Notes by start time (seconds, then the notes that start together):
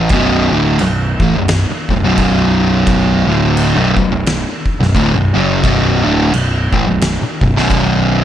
Already playing: A2 E3
0.09 B0 B1 F#2 B2, kick, crash
0.52 D1 D2 A2 D3
0.79 B0 B1 F#2, crash
1.19 A1 A2 E3, kick
1.34 B0 B1 F#2
1.48 snare, crash
1.69 muted picked electric bass stroke, muted distorted electric guitar stroke
1.89 B0 B1 F#2, kick
2.03 B0 B1 F#2 B2
2.18 kick, crash
2.87 kick, crash
3.26 D1 D2 A2 D3
3.57 crash
3.76 B0 B1 F#2
3.96 B0 B1 F#2, kick
4.12 B0 B1 F#2
4.26 snare, crash
4.66 kick
4.80 B0 B1 F#2, snare
4.95 D1 D2 A2, kick, crash
5.15 B0 B1 F#2
5.34 F#1 F#2 C#3 F#3
5.63 B0 B1 F#2 B2, kick, crash
6.04 D1 D2 A2 D3
6.32 B0 B1 F#2, crash
6.72 A1 A2 E3, kick
6.87 B0 B1 F#2
7.01 snare, crash
7.21 muted picked electric bass stroke, muted distorted electric guitar stroke
7.41 B0 B1 F#2, kick
7.55 B0 B1 F#2 B2, snare
7.70 kick, crash